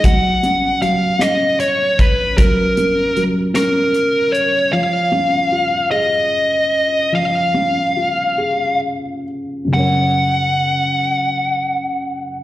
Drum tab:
HH |xxxxxx|xxxxxx|------|------|
SD |---r--|---rr-|------|------|
BD |o----o|o-----|------|------|

HH |------|
SD |------|
BD |------|